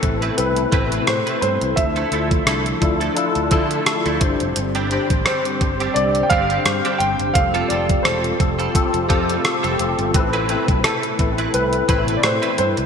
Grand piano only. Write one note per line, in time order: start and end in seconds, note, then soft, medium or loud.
0.00 0.40 A4 medium
0.38 1.09 B4 medium
1.07 1.40 C5 medium
1.41 1.78 C5 medium
1.76 3.12 E5 medium
5.25 5.97 C5 medium
5.94 6.24 D5 medium
6.23 6.30 G5 medium
6.30 7.02 F5 loud
6.98 7.35 G5 loud
7.34 7.70 F5 medium
7.68 8.02 D5 medium
8.03 9.39 C5 medium
10.84 11.56 A4 medium
11.54 12.19 B4 medium
12.17 12.23 D5 medium
12.25 12.57 C5 medium
12.58 12.66 C5 medium